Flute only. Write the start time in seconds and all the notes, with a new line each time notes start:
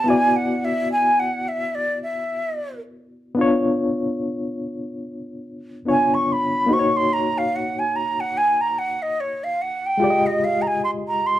0.08 G#5
0.36 F#5
0.65 E5
0.92 G#5
1.20 F#5
1.48 E5
1.75 D5
2.03 E5
5.90 G#5
6.14 C#6
6.32 B5
6.73 C#6
6.96 C6
7.13 A#5
7.38 F5
7.56 F#5
7.79 G#5
7.96 A#5
8.20 F#5
8.37 G#5
8.61 A#5
8.79 F#5
9.02 D#5
9.20 C#5
9.44 F5
9.62 F#5
9.86 G5
10.26 D#5
10.44 F5
10.62 A#5
10.67 G#5
10.84 C6
11.08 A#5
11.26 C6